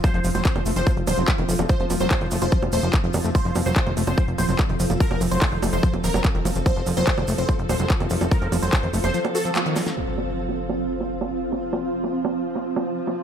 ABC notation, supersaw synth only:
X:1
M:4/4
L:1/16
Q:1/4=145
K:F
V:1 name="Supersaw synth"
c2 z c3 z c2 z c2 z4 | c2 z c3 z c2 z c2 z4 | c2 z c3 z c2 z c2 z4 | B2 z c3 z c2 z B2 z4 |
c2 z c3 z c2 z c2 z4 | B2 z c3 z c2 z A2 z4 | z16 | z16 |]